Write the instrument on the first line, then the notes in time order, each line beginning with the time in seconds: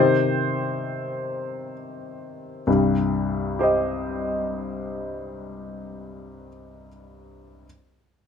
grand piano
Already playing: C3 D#3 C4 G4 C5
2.67 C2 G2
3.59 G4 C5 D#5